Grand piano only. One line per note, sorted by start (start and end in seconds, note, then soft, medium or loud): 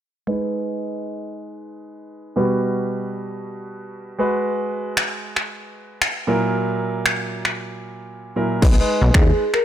0.27 2.32 G#3 medium
0.27 2.32 D#4 medium
0.27 2.33 B4 medium
2.36 4.15 B2 medium
2.36 4.15 G3 medium
2.36 4.15 F#4 medium
2.36 4.16 B4 medium
4.19 6.23 G#3 medium
4.19 6.24 F#4 medium
4.19 6.24 B4 medium
6.27 8.32 A#2 medium
6.27 8.32 F#3 medium
6.27 8.32 E4 medium
6.27 8.33 A#4 medium
8.36 8.62 A#2 medium
8.36 8.62 F#3 soft
8.36 8.62 E4 soft
8.36 8.63 A#4 medium
8.62 9.41 G#3 medium
8.62 9.41 D#4 medium
8.62 9.42 B4 loud